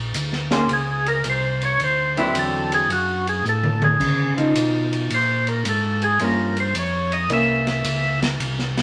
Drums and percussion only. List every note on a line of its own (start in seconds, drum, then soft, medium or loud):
0.14 hi-hat pedal medium
0.14 ride medium
0.33 snare soft
0.51 snare soft
0.51 ride soft
0.69 ride medium
1.06 ride soft
1.24 hi-hat pedal soft
1.24 ride medium
1.61 ride soft
1.80 ride medium
2.17 ride soft
2.35 hi-hat pedal medium
2.35 ride medium
2.72 ride soft
2.90 ride medium
3.27 ride soft
3.45 hi-hat pedal soft
3.63 high tom medium
3.82 high tom medium
4.00 kick medium
4.00 crash medium
4.38 ride soft
4.55 hi-hat pedal medium
4.55 ride medium
4.93 ride soft
5.10 ride medium
5.47 ride soft
5.65 hi-hat pedal medium
5.65 ride medium
6.02 ride soft
6.19 ride medium
6.56 ride soft
6.75 hi-hat pedal medium
6.75 ride medium
7.12 ride soft
7.30 ride medium
7.67 snare soft
7.67 ride soft
7.84 hi-hat pedal medium
7.84 ride medium
8.22 snare medium
8.22 ride soft
8.40 ride medium
8.59 snare soft
8.77 snare soft
8.77 ride soft